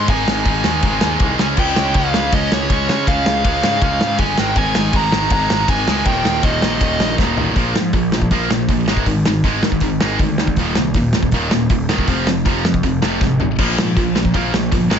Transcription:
Already playing: C6
0.08 G#1 G#2 D#3 G#3 G#5, kick, ride
0.27 G#1, snare
0.45 G#1 G#2 D#3 G#3, kick, ride
0.64 D#2 G#2 D#3 G#3, snare
0.83 G#1 G#2 D#3 G#3, kick, ride
1.01 D#2, snare
1.20 C2 G#2 D#3 G#3, kick, ride
1.39 C#2 C#3 G#3 C#4 G#5, snare
1.57 C#2 C#3 G#3 C#4 G5, kick, crash
1.76 C#2, snare
1.94 C#2 C#3 G#3 C#4 F5, kick, ride
2.14 C#2 C#3 G#3 C#4, snare
2.32 C#2 C#3 G#3 C#4 D#5, kick, ride
2.51 C#2 C#5, snare
2.70 C#2 C#3 G#3 C#4, kick, ride
2.89 C#3 G#3 C#4, snare
3.07 C#2 C#3 G#3 C#4 F5, kick, ride
3.26 C#2, snare
3.44 C#2 C#3 G#3 C#4, kick, ride
3.63 G#2 C#3 G#3 C#4 F5, snare
3.82 C#2 C#3 G#3 C#4 F5, kick, ride
4.00 G#2, snare
4.18 G1 C#3 G#3 C#4 G#5, kick, ride
4.38 G#1 G#2 D#3 G#3 G5, snare
4.56 G#1 G#2 D#3 G#3 G#5, kick, ride
4.75 G#1, snare
4.93 G#1 G#2 D#3 G#3 A#5, kick, ride
5.12 G#1 G#2 D#3 G#3, snare
5.30 G#1 G#2 D#3 G#3 A#5, kick, ride
5.50 G#1, snare
5.68 G#1 G#2 D#3 G#3 G#5, kick, ride
5.88 C#2 G#2 D#3 G#3, snare
6.05 D#1 D#2 A#2 D#3 G5, kick, ride
6.25 D#1, snare
6.43 D#1 D#2 A#2 D#3 D#5, kick, ride
6.62 A#1 D#2 A#2 D#3, snare
6.81 D#1 D#2 A#2 D#3, kick, ride
7.00 A#1, snare
7.18 D#1 D#2 A#2 D#3, kick, snare
7.37 A1 D#2 A#2 D#3, floor tom
7.56 A#1 A#2 F3 A#3, kick, open hi-hat
7.75 G#2 A#2 F3, snare
7.93 A#1 A#2 F3, kick, open hi-hat
8.12 A#2 F3, snare
8.22 kick
8.31 A#1 A#2 F3 A#3, kick, open hi-hat
8.50 A#1 A#2 F3, snare
8.69 A#1 A#2 F3, kick, open hi-hat
8.88 G#1 G#2 D#3 G#3, snare
8.97 kick
9.06 G#1 G#2 D#3, kick, open hi-hat
9.25 G#2 D#3, snare
9.44 G#1 G#2 D#3 G#3, kick, open hi-hat
9.63 G#2 D#3, snare
9.72 kick
9.80 G#1 G#2 D#3, kick, open hi-hat
10.01 G#1 G#2 D#3 G#3, snare
10.19 D2 G#2 D#3, kick, open hi-hat
10.38 G#2 D#3, snare
10.47 kick
10.56 D#1 D#2 A#2 D#3, kick, open hi-hat
10.75 C2 D#2 A#2, snare
10.94 D#1 D#2 A#2, kick, open hi-hat
11.13 D#2 A#2, snare
11.23 kick
11.32 D#1 D#2 A#2 D#3, kick, open hi-hat
11.51 D#1 D#2 A#2, snare
11.69 D#1 D#2 A#2, kick, open hi-hat
11.89 D#1 D#2 A#2 D#3, snare
11.98 kick
12.08 F1 F2 C3 F3, kick, open hi-hat
12.27 F2 C3, snare
12.45 F1 F2 C3 F3, kick, open hi-hat
12.64 F2 C3, snare
12.74 kick
12.83 F1 F2 C3, kick, open hi-hat
13.02 F1 F2 C3 F3, snare
13.21 G#1 F2 C3, kick, snare
13.40 F2 C3, floor tom
13.59 A#1 A#2 F3 A#3, kick, crash
13.77 G#2 A#2 F3, snare
13.97 A#1 A#2 F3, kick, open hi-hat
14.15 A#2 F3, snare
14.25 kick
14.34 A#1 A#2 F3 A#3, kick, open hi-hat
14.53 A#1 A#2 F3, snare
14.72 G1 A#2 F3, kick, open hi-hat
14.90 G#1 G#2 D#3 G#3, snare

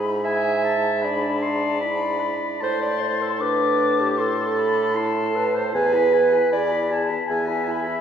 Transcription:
Already playing: G#2 E4 B5
0.24 E5 G#5
0.64 A5
1.02 D4 D5 B5
1.42 A5 C6
1.80 E4 B5
2.19 B5
2.60 A2 E4 C5 A5 C6
2.82 D5
3.01 C5
3.22 A4
3.38 D4 B4 A5 D6
4.00 G4
4.18 E4 A4 C6
4.58 B5
4.95 E4 A5 C6
5.36 B4
5.56 C5
5.74 E2 G#4 B4 G#5
5.94 E4 B5
6.13 G#4 G#5
6.33 E4 B5
6.51 E2 G#4 D5 G#5 B5
6.70 E4 B5
6.90 G#4 G#5 A5
7.08 E4 B5
7.27 E2 G#4 E5 G#5
7.31 G#5
7.46 E4 B5
7.65 G#4 G#5
7.71 B5
7.85 E4 B5

